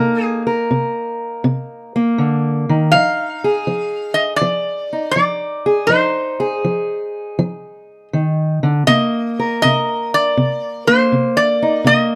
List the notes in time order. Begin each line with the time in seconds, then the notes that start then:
Already playing: C3 A#3 D#4 A#4
0.24 G#4
0.47 A#4
0.71 C3
1.44 C3
1.96 A#3
2.18 D3
2.69 D#3
2.92 F3 D#4 F5
3.44 G#4
3.67 F3
4.14 D#5
4.36 D5
4.41 F3
4.93 D#4
5.11 D5
5.16 F3
5.66 G#4
5.87 F3 D#4 C5
6.40 G#4
6.64 F3
7.39 F3
8.13 D#3
8.63 D3
8.87 C3 A#3 D#5
9.39 A#4
9.62 C3 D#5
10.14 D5
10.37 C3
10.87 A#3 C5
11.12 C3
11.37 D5
11.62 D#4
11.84 C3 A#3 D#5